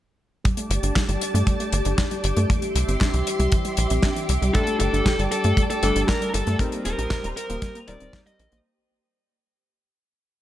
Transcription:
0.44 synth arpeggio sound G3, string machine G4 D5 A5 D6, kick, closed hi-hat
0.57 synth arpeggio sound A3, closed hi-hat
0.70 analog synth bass G1, closed hi-hat
0.83 analog synth bass G1, synth arpeggio sound D4, closed hi-hat
0.96 synth arpeggio sound G4, kick, snare, clap, closed hi-hat
1.09 analog synth bass G1, synth arpeggio sound G3, closed hi-hat
1.21 closed hi-hat
1.34 analog synth bass G2, synth arpeggio sound A3, closed hi-hat
1.47 synth arpeggio sound G3, kick, closed hi-hat
1.60 synth arpeggio sound A3, closed hi-hat
1.73 analog synth bass G1, closed hi-hat
1.85 analog synth bass G1, synth arpeggio sound D4, closed hi-hat
1.98 synth arpeggio sound G4, kick, snare, clap, closed hi-hat
2.11 synth arpeggio sound G3, closed hi-hat
2.24 analog synth bass G1, closed hi-hat
2.37 analog synth bass G2, synth arpeggio sound A3, closed hi-hat
2.50 synth arpeggio sound E3, string machine E5 C6, kick, closed hi-hat
2.62 synth arpeggio sound G3, closed hi-hat
2.75 analog synth bass C2, closed hi-hat
2.88 analog synth bass G1, synth arpeggio sound C4, closed hi-hat
3.01 synth arpeggio sound D4, kick, snare, clap, closed hi-hat
3.14 analog synth bass C2, synth arpeggio sound E3, closed hi-hat
3.27 closed hi-hat
3.39 analog synth bass C2, synth arpeggio sound G3, closed hi-hat
3.52 synth arpeggio sound E3, kick, closed hi-hat
3.65 synth arpeggio sound G3, closed hi-hat
3.77 analog synth bass A#1, closed hi-hat
3.90 analog synth bass A#1, synth arpeggio sound C4, closed hi-hat
4.03 synth arpeggio sound D4, kick, snare, clap, closed hi-hat
4.16 synth arpeggio sound E3, closed hi-hat
4.29 analog synth bass C2, closed hi-hat
4.42 analog synth bass C2, synth arpeggio sound G3, closed hi-hat
4.55 electric grand piano G3 A3 D4 A4, synth arpeggio sound G3, lead electric guitar A4, string machine D5 A5, kick, closed hi-hat
4.67 synth arpeggio sound A3, closed hi-hat
4.80 analog synth bass G1, lead electric guitar A4, closed hi-hat
4.93 analog synth bass G1, synth arpeggio sound D4, closed hi-hat
5.06 synth arpeggio sound G4, kick, snare, clap, closed hi-hat
5.19 analog synth bass G1, synth arpeggio sound G3, closed hi-hat
5.32 lead electric guitar A4, closed hi-hat
5.44 analog synth bass G2, synth arpeggio sound A3, closed hi-hat
5.57 synth arpeggio sound G3, kick, closed hi-hat
5.70 synth arpeggio sound A3, lead electric guitar A4, closed hi-hat
5.83 analog synth bass G1, electric grand piano G3 A3 D4 A4, closed hi-hat
5.96 analog synth bass G1, synth arpeggio sound D4, closed hi-hat
6.09 synth arpeggio sound G4, lead electric guitar A#4, kick, snare, clap, closed hi-hat
6.21 synth arpeggio sound G3, closed hi-hat
6.34 analog synth bass G1, lead electric guitar A4, closed hi-hat
6.47 analog synth bass G2, synth arpeggio sound A3, closed hi-hat
6.59 synth arpeggio sound G3, electric grand piano G3 C4 D#4 A#4, string machine C5 A#5 D#6, kick, closed hi-hat
6.72 synth arpeggio sound A#3, closed hi-hat
6.85 analog synth bass D#1, lead electric guitar A#4, closed hi-hat
6.98 analog synth bass A#1, synth arpeggio sound C4, closed hi-hat
7.10 synth arpeggio sound D#4, kick, snare, clap, closed hi-hat
7.24 analog synth bass D#1, synth arpeggio sound G3, closed hi-hat
7.37 lead electric guitar A#4, closed hi-hat
7.50 analog synth bass D#1, synth arpeggio sound A#3, closed hi-hat
7.62 synth arpeggio sound G3, kick, snare, closed hi-hat
7.75 synth arpeggio sound A#3, closed hi-hat
7.88 analog synth bass D#1, electric grand piano G3 C4 D#4 A#4, lead electric guitar D5, closed hi-hat
8.00 analog synth bass D#1, synth arpeggio sound C4, closed hi-hat
8.13 synth arpeggio sound D#4, kick, snare, clap, closed hi-hat
8.27 synth arpeggio sound G3, lead electric guitar D#5, closed hi-hat
8.39 analog synth bass A#1, closed hi-hat
8.52 analog synth bass A#1, synth arpeggio sound A#3, closed hi-hat

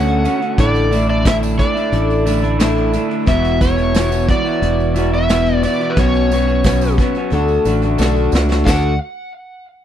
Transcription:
Already playing: fingered electric bass D2, clean electric guitar D3 A3 C#4 F#4, electric slide guitar F#5
0.08 closed hi-hat
0.23 clean electric guitar D3 A3 C#4 F#4, closed hi-hat, tambourine
0.40 clean electric guitar A3 C#4 F#4, closed hi-hat
0.57 fingered electric bass A1, clean electric guitar A2 D3 A3 D4 E4, electric slide guitar D5, kick, closed hi-hat, tambourine
0.75 closed hi-hat, tambourine
0.91 clean electric guitar D3 A3 D4 E4, closed hi-hat, tambourine
1.07 clean electric guitar A3 D4 E4, electric slide guitar D5, tambourine
1.24 clean electric guitar A2 D3 A3 D4 E4, electric slide guitar E5, kick, snare, closed hi-hat, tambourine
1.41 clean electric guitar A3 D4 E4, tambourine
1.57 clean electric guitar D3 A3 D4 E4, electric slide guitar D5, kick, closed hi-hat, tambourine
1.74 clean electric guitar A3 D4 E4, closed hi-hat, tambourine
1.92 fingered electric bass A1, twelve-string acoustic guitar D3 A3 D4 E4, closed hi-hat
2.10 tambourine
2.25 clean electric guitar D3 A3 D4 E4, closed hi-hat, tambourine
2.42 clean electric guitar A3 D4 E4, closed hi-hat, tambourine
2.58 clean electric guitar A2 D3 A3 D4 E4, snare, closed hi-hat, tambourine
2.77 closed hi-hat
2.93 clean electric guitar D3 A3 D4 E4, closed hi-hat, tambourine
3.09 clean electric guitar A3 D4 E4, closed hi-hat
3.26 fingered electric bass E1, clean electric guitar E2 B2 E3 B3 E4 F#4, electric slide guitar E5, kick, closed hi-hat, tambourine
3.45 closed hi-hat, tambourine
3.60 clean electric guitar E3 B3 E4 F#4, electric slide guitar C#5, kick, closed hi-hat, tambourine
3.76 clean electric guitar E3 B3 E4 F#4, closed hi-hat, tambourine
3.93 clean electric guitar E2 B2 E3 B3 E4 F#4, snare, closed hi-hat, tambourine
4.10 clean electric guitar E3 B3 E4 F#4, closed hi-hat, tambourine
4.27 clean electric guitar E3 B3 E4 F#4, electric slide guitar D5, kick, closed hi-hat
4.31 twelve-string acoustic guitar E3
4.44 clean electric guitar E3 B3 E4 F#4, tambourine
4.62 fingered electric bass E1, twelve-string acoustic guitar E3 B3 E4 F#4, closed hi-hat
4.80 tambourine
4.95 clean electric guitar E3 B3 E4 F#4, closed hi-hat, tambourine
4.99 twelve-string acoustic guitar E3
5.12 clean electric guitar E3 B3 E4 F#4, electric slide guitar E5, tambourine
5.29 clean electric guitar E2 B2 E3 B3 E4 F#4, snare, closed hi-hat, tambourine
5.46 closed hi-hat
5.62 clean electric guitar E3 B3 E4 F#4, electric slide guitar D5, closed hi-hat, tambourine
5.79 clean electric guitar E3 B3 E4 F#4, closed hi-hat
5.90 electric slide guitar B4
5.96 fingered electric bass B1, clean electric guitar B2 F#3 B3 C#4 F#4, electric slide guitar C#5, kick, closed hi-hat, tambourine
6.14 closed hi-hat, tambourine
6.31 clean electric guitar F#3 B3 C#4 F#4, closed hi-hat, tambourine
6.47 clean electric guitar B3 C#4 F#4, tambourine
6.64 clean electric guitar B2 F#3 B3 C#4 F#4, kick, snare, closed hi-hat, tambourine
6.81 clean electric guitar B3 C#4 F#4, tambourine
6.97 clean electric guitar F#3 B3 C#4, twelve-string acoustic guitar F#4, kick, snare, closed hi-hat, tambourine
7.01 clean electric guitar F#4
7.15 clean electric guitar B3 C#4 F#4, closed hi-hat, tambourine
7.31 fingered electric bass D2, clean electric guitar D3 A3 D4 F#4, closed hi-hat, tambourine
7.48 tambourine
7.65 fingered electric bass A1, clean electric guitar D3 A3 D4 F#4, closed hi-hat, tambourine
7.82 clean electric guitar A3 D4 F#4, closed hi-hat, tambourine
7.98 fingered electric bass B1, clean electric guitar D3 A3 D4 F#4, snare, tambourine
8.16 tambourine
8.32 fingered electric bass C#2, clean electric guitar D3 A3 D4 F#4, snare, tambourine
8.49 clean electric guitar A3 D4 F#4, snare, tambourine
8.65 fingered electric bass D2, clean electric guitar D3 A3 D4 F#4, electric slide guitar F#5, kick, snare, tambourine, crash

